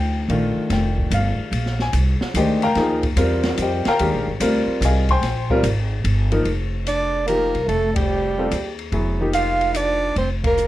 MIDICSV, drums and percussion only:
0, 0, Header, 1, 2, 480
1, 0, Start_track
1, 0, Tempo, 410959
1, 350, Time_signature, 3, 2, 24, 8
1, 12467, End_track
2, 0, Start_track
2, 0, Title_t, "Drums"
2, 345, Note_on_c, 9, 51, 54
2, 462, Note_off_c, 9, 51, 0
2, 819, Note_on_c, 9, 51, 65
2, 823, Note_on_c, 9, 38, 38
2, 936, Note_off_c, 9, 51, 0
2, 939, Note_off_c, 9, 38, 0
2, 1140, Note_on_c, 9, 36, 54
2, 1256, Note_off_c, 9, 36, 0
2, 1301, Note_on_c, 9, 44, 55
2, 1301, Note_on_c, 9, 51, 79
2, 1418, Note_off_c, 9, 44, 0
2, 1418, Note_off_c, 9, 51, 0
2, 1781, Note_on_c, 9, 51, 65
2, 1898, Note_off_c, 9, 51, 0
2, 1939, Note_on_c, 9, 38, 30
2, 2056, Note_off_c, 9, 38, 0
2, 2096, Note_on_c, 9, 38, 45
2, 2212, Note_off_c, 9, 38, 0
2, 2254, Note_on_c, 9, 44, 62
2, 2254, Note_on_c, 9, 51, 70
2, 2371, Note_off_c, 9, 44, 0
2, 2371, Note_off_c, 9, 51, 0
2, 2581, Note_on_c, 9, 38, 54
2, 2698, Note_off_c, 9, 38, 0
2, 2740, Note_on_c, 9, 44, 57
2, 2740, Note_on_c, 9, 51, 75
2, 2856, Note_off_c, 9, 44, 0
2, 2856, Note_off_c, 9, 51, 0
2, 3061, Note_on_c, 9, 51, 46
2, 3178, Note_off_c, 9, 51, 0
2, 3214, Note_on_c, 9, 51, 54
2, 3218, Note_on_c, 9, 38, 35
2, 3331, Note_off_c, 9, 51, 0
2, 3335, Note_off_c, 9, 38, 0
2, 3540, Note_on_c, 9, 51, 48
2, 3543, Note_on_c, 9, 36, 58
2, 3657, Note_off_c, 9, 51, 0
2, 3660, Note_off_c, 9, 36, 0
2, 3699, Note_on_c, 9, 44, 58
2, 3699, Note_on_c, 9, 51, 78
2, 3816, Note_off_c, 9, 44, 0
2, 3816, Note_off_c, 9, 51, 0
2, 4011, Note_on_c, 9, 51, 48
2, 4015, Note_on_c, 9, 38, 61
2, 4128, Note_off_c, 9, 51, 0
2, 4131, Note_off_c, 9, 38, 0
2, 4176, Note_on_c, 9, 44, 61
2, 4176, Note_on_c, 9, 51, 69
2, 4293, Note_off_c, 9, 44, 0
2, 4293, Note_off_c, 9, 51, 0
2, 4498, Note_on_c, 9, 51, 47
2, 4502, Note_on_c, 9, 38, 52
2, 4615, Note_off_c, 9, 51, 0
2, 4618, Note_off_c, 9, 38, 0
2, 4664, Note_on_c, 9, 51, 68
2, 4781, Note_off_c, 9, 51, 0
2, 5143, Note_on_c, 9, 44, 64
2, 5143, Note_on_c, 9, 51, 86
2, 5260, Note_off_c, 9, 44, 0
2, 5260, Note_off_c, 9, 51, 0
2, 5629, Note_on_c, 9, 44, 67
2, 5629, Note_on_c, 9, 51, 81
2, 5745, Note_off_c, 9, 44, 0
2, 5745, Note_off_c, 9, 51, 0
2, 5942, Note_on_c, 9, 51, 46
2, 5944, Note_on_c, 9, 36, 60
2, 6059, Note_off_c, 9, 51, 0
2, 6061, Note_off_c, 9, 36, 0
2, 6104, Note_on_c, 9, 51, 60
2, 6108, Note_on_c, 9, 38, 36
2, 6221, Note_off_c, 9, 51, 0
2, 6225, Note_off_c, 9, 38, 0
2, 6424, Note_on_c, 9, 36, 60
2, 6540, Note_off_c, 9, 36, 0
2, 6582, Note_on_c, 9, 44, 64
2, 6582, Note_on_c, 9, 51, 79
2, 6699, Note_off_c, 9, 44, 0
2, 6699, Note_off_c, 9, 51, 0
2, 7062, Note_on_c, 9, 51, 68
2, 7178, Note_off_c, 9, 51, 0
2, 7377, Note_on_c, 9, 51, 50
2, 7493, Note_off_c, 9, 51, 0
2, 7536, Note_on_c, 9, 51, 51
2, 7653, Note_off_c, 9, 51, 0
2, 8018, Note_on_c, 9, 44, 55
2, 8018, Note_on_c, 9, 51, 66
2, 8135, Note_off_c, 9, 44, 0
2, 8135, Note_off_c, 9, 51, 0
2, 8498, Note_on_c, 9, 44, 50
2, 8498, Note_on_c, 9, 51, 58
2, 8614, Note_off_c, 9, 44, 0
2, 8614, Note_off_c, 9, 51, 0
2, 8813, Note_on_c, 9, 51, 36
2, 8930, Note_off_c, 9, 51, 0
2, 8979, Note_on_c, 9, 51, 48
2, 9095, Note_off_c, 9, 51, 0
2, 9296, Note_on_c, 9, 51, 74
2, 9303, Note_on_c, 9, 36, 82
2, 9413, Note_off_c, 9, 51, 0
2, 9419, Note_off_c, 9, 36, 0
2, 9944, Note_on_c, 9, 44, 53
2, 9944, Note_on_c, 9, 51, 66
2, 10061, Note_off_c, 9, 44, 0
2, 10061, Note_off_c, 9, 51, 0
2, 10263, Note_on_c, 9, 51, 39
2, 10380, Note_off_c, 9, 51, 0
2, 10421, Note_on_c, 9, 51, 49
2, 10537, Note_off_c, 9, 51, 0
2, 10901, Note_on_c, 9, 44, 56
2, 10901, Note_on_c, 9, 51, 62
2, 11018, Note_off_c, 9, 44, 0
2, 11018, Note_off_c, 9, 51, 0
2, 11225, Note_on_c, 9, 51, 41
2, 11342, Note_off_c, 9, 51, 0
2, 11382, Note_on_c, 9, 44, 65
2, 11382, Note_on_c, 9, 51, 62
2, 11499, Note_off_c, 9, 44, 0
2, 11499, Note_off_c, 9, 51, 0
2, 11869, Note_on_c, 9, 51, 55
2, 11986, Note_off_c, 9, 51, 0
2, 12193, Note_on_c, 9, 36, 77
2, 12196, Note_on_c, 9, 51, 61
2, 12309, Note_off_c, 9, 36, 0
2, 12312, Note_off_c, 9, 51, 0
2, 12351, Note_on_c, 9, 44, 58
2, 12467, Note_off_c, 9, 44, 0
2, 12467, End_track
0, 0, End_of_file